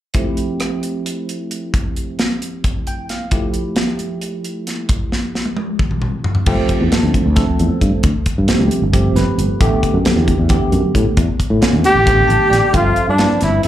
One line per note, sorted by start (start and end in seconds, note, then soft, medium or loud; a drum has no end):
0.14 3.28 F3 medium
0.14 3.28 A3 medium
0.14 3.28 C4 medium
0.14 3.28 E4 medium
0.14 3.28 G4 medium
0.14 kick medium
0.14 closed hi-hat medium
0.37 closed hi-hat soft
0.60 cross-stick medium
0.60 closed hi-hat medium
0.83 closed hi-hat soft
1.06 closed hi-hat medium
1.29 closed hi-hat soft
1.51 closed hi-hat medium
1.74 kick medium
1.74 closed hi-hat medium
1.96 closed hi-hat medium
2.19 snare medium
2.19 closed hi-hat medium
2.42 closed hi-hat medium
2.64 kick medium
2.64 closed hi-hat medium
2.87 3.08 G5 medium
2.87 closed hi-hat soft
3.09 3.31 F5 medium
3.09 snare soft
3.09 closed hi-hat medium
3.31 6.43 F3 medium
3.31 6.43 A3 medium
3.31 6.43 E4 medium
3.31 6.43 G4 medium
3.31 kick medium
3.31 closed hi-hat medium
3.54 closed hi-hat soft
3.76 snare medium
3.76 closed hi-hat medium
3.99 closed hi-hat soft
4.21 closed hi-hat medium
4.44 closed hi-hat soft
4.67 snare soft
4.67 closed hi-hat medium
4.89 kick loud
4.89 closed hi-hat medium
5.12 snare soft
5.35 snare soft
5.46 high tom soft
5.57 high tom medium
5.79 kick medium
5.79 mid tom medium
5.91 mid tom soft
6.02 mid tom medium
6.24 floor tom medium
6.35 floor tom medium
6.46 6.56 G1 medium
6.46 6.83 F3 medium
6.46 6.83 A3 medium
6.46 6.83 C4 medium
6.46 6.83 G4 loud
6.46 kick loud
6.46 crash medium
6.69 muted fretless electric bass stroke soft
6.69 kick medium
6.69 closed hi-hat medium
6.81 6.90 E2 medium
6.91 7.26 F3 medium
6.91 7.26 A3 medium
6.91 7.27 C4 medium
6.91 7.27 A4 medium
6.91 muted fretless electric bass stroke soft
6.91 snare medium
6.91 closed hi-hat medium
7.03 7.21 D2 medium
7.14 kick medium
7.14 closed hi-hat medium
7.26 7.44 D2 medium
7.36 8.06 F3 medium
7.36 8.06 A3 medium
7.36 8.06 C4 medium
7.36 8.06 A4 medium
7.36 kick loud
7.36 snare soft
7.36 closed hi-hat medium
7.59 7.69 E2 medium
7.59 closed hi-hat soft
7.72 muted fretless electric bass stroke soft
7.81 7.91 G2 medium
7.81 kick medium
7.81 closed hi-hat medium
7.95 muted fretless electric bass stroke soft
8.03 8.13 D2 medium
8.03 kick loud
8.03 closed hi-hat medium
8.26 muted fretless electric bass stroke soft
8.26 kick medium
8.26 closed hi-hat medium
8.38 8.47 G2 medium
8.48 8.83 F3 medium
8.48 8.83 A3 medium
8.48 8.83 C4 medium
8.48 8.83 G4 medium
8.48 muted fretless electric bass stroke soft
8.48 snare medium
8.48 closed hi-hat medium
8.59 8.69 D2 medium
8.71 closed hi-hat medium
8.82 9.09 G1 medium
8.93 9.61 F3 medium
8.93 9.60 A3 medium
8.93 9.61 C4 medium
8.93 9.60 G4 medium
8.93 kick medium
8.93 closed hi-hat medium
9.15 9.25 G1 medium
9.15 9.58 B4 medium
9.15 snare soft
9.15 closed hi-hat medium
9.38 9.47 G1 medium
9.38 closed hi-hat medium
9.60 9.70 A1 medium
9.60 9.97 D3 medium
9.60 9.97 A3 medium
9.60 9.97 B3 medium
9.60 9.97 G4 medium
9.60 kick loud
9.60 closed hi-hat medium
9.83 muted fretless electric bass stroke soft
9.83 kick medium
9.83 closed hi-hat medium
9.94 10.03 F#2 medium
10.05 10.40 D3 medium
10.05 10.40 A3 medium
10.05 10.40 B3 medium
10.05 10.40 G4 medium
10.05 muted fretless electric bass stroke soft
10.05 snare loud
10.05 closed hi-hat medium
10.16 10.34 E2 medium
10.28 kick medium
10.28 closed hi-hat medium
10.38 10.57 E2 medium
10.49 11.19 D3 medium
10.49 11.19 A3 medium
10.49 11.19 B3 medium
10.49 11.19 G4 medium
10.49 kick loud
10.49 closed hi-hat medium
10.72 10.81 F#2 medium
10.72 closed hi-hat soft
10.84 muted fretless electric bass stroke soft
10.95 11.04 A2 medium
10.95 kick medium
10.95 closed hi-hat medium
11.06 muted fretless electric bass stroke soft
11.17 11.26 E2 medium
11.17 kick loud
11.17 closed hi-hat medium
11.40 muted fretless electric bass stroke soft
11.40 kick medium
11.40 closed hi-hat medium
11.50 11.60 A2 medium
11.61 11.97 D3 medium
11.61 11.97 A3 medium
11.61 11.97 B3 medium
11.61 11.97 C#4 medium
11.61 muted fretless electric bass stroke soft
11.61 snare medium
11.61 closed hi-hat medium
11.73 11.82 E2 medium
11.84 12.76 G4 loud
11.84 closed hi-hat medium
11.88 12.78 G4 medium
11.95 12.22 A1 medium
12.06 12.74 D3 medium
12.06 12.74 A3 medium
12.06 12.74 B3 medium
12.06 12.74 G4 medium
12.06 kick loud
12.06 closed hi-hat medium
12.28 12.38 A1 medium
12.28 12.49 A5 medium
12.28 closed hi-hat medium
12.50 12.60 A1 medium
12.50 12.72 D5 medium
12.50 snare soft
12.50 closed hi-hat medium
12.72 12.92 G1 medium
12.72 13.09 F3 medium
12.72 13.09 C4 medium
12.72 13.08 F4 medium
12.72 13.10 A4 medium
12.72 13.10 E5 medium
12.72 kick loud
12.72 closed hi-hat medium
12.77 13.09 F4 medium
12.96 closed hi-hat soft
13.08 13.26 G2 medium
13.08 13.40 D4 medium
13.18 13.53 F3 medium
13.18 13.54 C4 soft
13.18 13.53 E4 soft
13.18 13.54 B4 medium
13.18 snare medium
13.18 closed hi-hat medium
13.41 13.60 G1 medium
13.41 13.63 E4 medium
13.41 13.64 E4 medium
13.41 snare soft
13.41 closed hi-hat medium
13.63 13.68 F1 medium
13.63 13.68 F3 medium
13.63 13.68 C4 medium
13.63 13.68 E4 medium
13.63 13.68 A4 medium
13.63 closed hi-hat medium